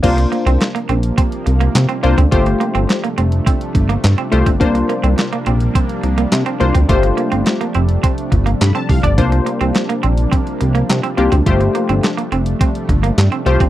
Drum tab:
CC |x---------------|----------------|----------------|----------------|
HH |xxxxxxxxxxxxxxxx|xxxxxxxxxxxxxxxx|xxxxxxxxxxxxxxxx|xxxxxxxxxxxxxxox|
CP |----x-------x---|----x-------x---|----x-------x---|----x-------x---|
SD |----o-------o---|----o-------o---|----o-------o---|----o-------o---|
BD |o-------o------o|o-------o-o----o|o-------o------o|o-------o-o---oo|

CC |----------------|----------------|
HH |xxxxxxxxxxxxxxxx|xxxxxxxxxxxxxxxx|
CP |----x-------x---|----x-------x---|
SD |----o-------o---|----o-------o---|
BD |o-------o------o|o-------o-o----o|